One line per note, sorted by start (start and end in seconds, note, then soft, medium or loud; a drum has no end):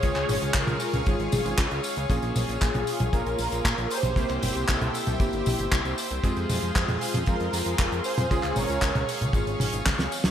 0.00 0.12 C#2 loud
0.00 1.03 G#3 medium
0.00 1.03 C#4 medium
0.00 1.03 F4 medium
0.00 0.51 G#4 medium
0.00 4.13 G#4 medium
0.00 1.03 G#4 loud
0.00 0.57 C#5 loud
0.00 4.13 C#5 medium
0.00 4.13 F5 medium
0.00 2.08 C#6 medium
0.00 kick loud
0.00 closed hi-hat medium
0.00 tambourine soft
0.15 0.25 C#2 medium
0.15 clap soft
0.15 closed hi-hat soft
0.15 tambourine soft
0.29 0.38 G#1 loud
0.29 open hi-hat loud
0.29 high tom medium
0.29 tambourine medium
0.42 0.51 C#2 medium
0.42 closed hi-hat medium
0.42 tambourine soft
0.54 0.64 C#2 loud
0.54 1.03 F4 medium
0.54 1.08 A#4 loud
0.54 kick loud
0.54 clap loud
0.54 closed hi-hat medium
0.54 tambourine soft
0.67 0.77 C#2 medium
0.67 closed hi-hat soft
0.67 high tom medium
0.67 tambourine soft
0.80 open hi-hat loud
0.80 tambourine medium
0.93 1.03 C#2 medium
0.93 closed hi-hat medium
0.93 high tom medium
0.93 tambourine soft
1.06 1.16 G#1 loud
1.06 2.07 G#3 medium
1.06 2.07 C#4 medium
1.06 2.07 F4 medium
1.06 1.80 F4 medium
1.06 2.07 G#4 medium
1.06 1.80 G#4 medium
1.06 kick loud
1.06 closed hi-hat medium
1.06 tambourine soft
1.20 1.29 G#1 medium
1.20 closed hi-hat soft
1.20 tambourine soft
1.32 1.42 G#1 loud
1.32 open hi-hat loud
1.32 high tom medium
1.32 tambourine medium
1.45 1.54 G#1 medium
1.45 closed hi-hat medium
1.45 tambourine soft
1.58 1.67 C#2 loud
1.58 kick loud
1.58 clap loud
1.58 closed hi-hat medium
1.71 1.80 C#2 medium
1.71 closed hi-hat soft
1.71 tambourine soft
1.83 open hi-hat loud
1.83 tambourine medium
1.96 2.06 C#2 medium
1.96 closed hi-hat medium
1.96 tambourine soft
2.10 2.19 A#1 loud
2.10 3.10 A#3 medium
2.10 3.10 C#4 medium
2.10 3.10 F4 medium
2.10 3.10 G#4 loud
2.10 kick loud
2.10 closed hi-hat medium
2.10 tambourine soft
2.22 2.32 A#1 medium
2.22 closed hi-hat soft
2.22 tambourine soft
2.36 2.45 A#1 loud
2.36 open hi-hat loud
2.36 high tom medium
2.36 tambourine medium
2.49 2.58 A#1 medium
2.49 closed hi-hat medium
2.49 tambourine soft
2.61 2.71 A#1 loud
2.61 3.10 F4 medium
2.61 3.15 G#4 loud
2.61 kick loud
2.61 clap loud
2.61 closed hi-hat medium
2.61 tambourine soft
2.74 2.84 A#1 medium
2.74 closed hi-hat soft
2.74 high tom medium
2.74 tambourine soft
2.87 open hi-hat loud
2.87 tambourine medium
3.00 3.10 A#1 medium
3.00 closed hi-hat medium
3.00 high tom medium
3.00 tambourine soft
3.13 3.22 A#1 loud
3.13 4.14 A#3 medium
3.13 4.14 C#4 medium
3.13 4.14 F4 medium
3.13 3.87 F4 medium
3.13 4.14 G#4 medium
3.13 3.93 A#4 loud
3.13 kick loud
3.13 closed hi-hat medium
3.13 tambourine soft
3.26 3.36 A#1 medium
3.26 closed hi-hat soft
3.26 tambourine soft
3.38 3.48 A#1 loud
3.38 open hi-hat loud
3.38 tambourine medium
3.52 3.61 A#1 medium
3.52 closed hi-hat medium
3.52 tambourine soft
3.65 3.74 A#2 loud
3.65 kick loud
3.65 clap loud
3.65 closed hi-hat medium
3.65 tambourine soft
3.78 3.87 A#1 medium
3.78 closed hi-hat soft
3.78 tambourine soft
3.90 4.65 G4 medium
3.90 4.71 C5 loud
3.90 open hi-hat loud
3.90 tambourine medium
4.03 4.13 A#1 medium
4.03 closed hi-hat medium
4.03 high tom medium
4.03 tambourine soft
4.16 4.26 C2 loud
4.16 5.17 A#3 medium
4.16 5.17 C4 medium
4.16 5.17 E4 medium
4.16 6.22 G4 medium
4.16 5.17 G4 loud
4.16 8.27 C5 medium
4.16 6.22 E5 medium
4.16 kick loud
4.16 closed hi-hat medium
4.16 tambourine soft
4.29 4.39 C2 medium
4.29 clap soft
4.29 closed hi-hat soft
4.29 tambourine soft
4.42 4.52 G1 medium
4.42 open hi-hat loud
4.42 high tom medium
4.42 tambourine medium
4.55 4.65 C2 medium
4.55 closed hi-hat medium
4.55 tambourine soft
4.68 4.78 C2 loud
4.68 5.17 E4 medium
4.68 5.22 A4 loud
4.68 kick loud
4.68 clap loud
4.68 closed hi-hat medium
4.68 tambourine soft
4.81 4.91 C2 medium
4.81 closed hi-hat soft
4.81 high tom medium
4.81 tambourine soft
4.94 open hi-hat loud
4.94 tambourine medium
5.07 5.17 C2 medium
5.07 closed hi-hat medium
5.07 high tom medium
5.07 tambourine soft
5.20 5.29 G1 loud
5.20 6.21 A#3 medium
5.20 6.21 C4 medium
5.20 6.21 E4 medium
5.20 5.94 E4 medium
5.20 6.21 G4 medium
5.20 5.94 G4 medium
5.20 kick loud
5.20 closed hi-hat medium
5.20 tambourine soft
5.33 5.42 G1 medium
5.33 closed hi-hat soft
5.33 tambourine soft
5.46 5.55 A#1 loud
5.46 open hi-hat loud
5.46 high tom medium
5.46 tambourine medium
5.59 5.68 G1 medium
5.59 closed hi-hat medium
5.59 tambourine soft
5.72 5.81 C2 loud
5.72 kick loud
5.72 clap loud
5.72 closed hi-hat medium
5.72 tambourine soft
5.85 5.94 C2 medium
5.85 closed hi-hat soft
5.85 tambourine soft
5.98 open hi-hat loud
5.98 tambourine medium
6.11 6.20 C2 medium
6.11 closed hi-hat medium
6.11 tambourine soft
6.24 6.33 F2 loud
6.24 7.24 G#3 medium
6.24 7.24 C4 medium
6.24 7.24 F4 medium
6.24 10.31 G#4 medium
6.24 7.24 G#4 loud
6.24 10.31 F5 medium
6.24 8.29 C6 medium
6.24 kick loud
6.24 closed hi-hat medium
6.24 tambourine soft
6.36 6.46 F2 medium
6.36 closed hi-hat soft
6.36 tambourine soft
6.49 6.59 F2 loud
6.49 open hi-hat loud
6.49 high tom medium
6.49 tambourine medium
6.62 6.72 F2 medium
6.62 closed hi-hat medium
6.62 tambourine soft
6.75 6.85 F2 loud
6.75 7.24 F4 medium
6.75 7.24 G#4 medium
6.75 kick loud
6.75 clap loud
6.75 closed hi-hat medium
6.88 6.98 F2 medium
6.88 closed hi-hat soft
6.88 high tom medium
6.88 tambourine soft
7.01 open hi-hat loud
7.01 tambourine medium
7.14 7.23 F2 medium
7.14 closed hi-hat medium
7.14 high tom medium
7.14 tambourine soft
7.26 7.36 F2 loud
7.26 8.28 G#3 medium
7.26 8.28 C4 medium
7.26 8.28 F4 medium
7.26 8.01 F4 medium
7.26 8.28 G#4 medium
7.26 8.01 A#4 loud
7.26 kick loud
7.26 closed hi-hat medium
7.26 tambourine soft
7.40 7.49 F2 medium
7.40 closed hi-hat soft
7.40 tambourine soft
7.53 7.62 F2 loud
7.53 open hi-hat loud
7.53 tambourine medium
7.66 7.75 F2 medium
7.66 closed hi-hat medium
7.66 tambourine soft
7.79 7.88 F1 loud
7.79 kick loud
7.79 clap loud
7.79 closed hi-hat medium
7.79 tambourine soft
7.92 8.01 F2 medium
7.92 closed hi-hat soft
7.92 tambourine soft
8.04 8.29 G#4 medium
8.04 8.32 C5 loud
8.04 open hi-hat loud
8.04 tambourine medium
8.18 8.27 F2 medium
8.18 closed hi-hat medium
8.18 high tom medium
8.18 tambourine soft
8.31 8.40 C#2 loud
8.31 9.31 G#3 medium
8.31 9.31 C#4 medium
8.31 9.31 F4 medium
8.31 8.55 F4 medium
8.31 9.31 G#4 loud
8.31 8.57 G#4 loud
8.31 10.31 C#5 medium
8.31 10.31 C#6 medium
8.31 kick loud
8.31 closed hi-hat medium
8.31 tambourine soft
8.43 8.53 C#2 medium
8.43 clap soft
8.43 closed hi-hat soft
8.43 tambourine soft
8.56 8.66 G#1 loud
8.56 9.05 A#4 medium
8.56 9.05 C#5 loud
8.56 open hi-hat loud
8.56 high tom medium
8.56 tambourine medium
8.69 8.79 C#2 medium
8.69 closed hi-hat medium
8.69 tambourine soft
8.81 8.91 C#2 loud
8.81 kick loud
8.81 clap loud
8.81 closed hi-hat medium
8.81 tambourine soft
8.95 9.04 C#2 medium
8.95 closed hi-hat soft
8.95 high tom medium
8.95 tambourine soft
9.09 open hi-hat loud
9.09 tambourine medium
9.21 9.30 C#2 medium
9.21 closed hi-hat medium
9.21 high tom medium
9.21 tambourine soft
9.33 9.43 G#1 loud
9.33 10.31 G#3 medium
9.33 10.31 C#4 medium
9.33 10.31 F4 medium
9.33 10.31 G#4 medium
9.33 kick loud
9.33 closed hi-hat medium
9.33 tambourine soft
9.47 9.56 G#1 medium
9.47 closed hi-hat medium
9.47 tambourine soft
9.60 9.69 G#1 loud
9.60 open hi-hat loud
9.60 high tom medium
9.60 tambourine medium
9.73 9.82 G#1 medium
9.73 closed hi-hat medium
9.73 tambourine soft
9.86 9.95 C#2 loud
9.86 kick loud
9.86 snare medium
9.86 clap loud
9.86 closed hi-hat medium
9.86 tambourine soft
9.99 10.08 C#2 medium
9.99 snare medium
9.99 closed hi-hat soft
9.99 tambourine soft
10.12 open hi-hat loud
10.12 tambourine medium
10.24 10.31 C#2 medium
10.24 snare medium
10.24 closed hi-hat medium
10.24 tambourine soft